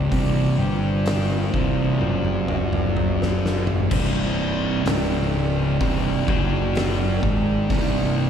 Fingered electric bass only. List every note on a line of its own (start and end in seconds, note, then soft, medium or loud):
0.12 0.55 C1 loud
0.58 1.49 G1 medium
1.54 1.98 C1 loud
2.01 3.86 F#1 medium
3.92 4.82 C1 loud
4.86 5.76 C#1 loud
5.81 6.24 C1 loud
6.28 7.18 F#1 medium
7.23 7.67 G#1 loud
7.70 8.30 C1 loud